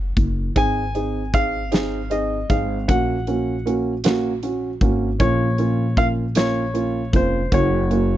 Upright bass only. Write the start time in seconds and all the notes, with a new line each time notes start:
Already playing: F#1
0.17 F#1
0.56 G#1
2.50 G#1
2.89 A#1
4.81 G#1
5.20 A#1
7.13 F1
7.52 F#1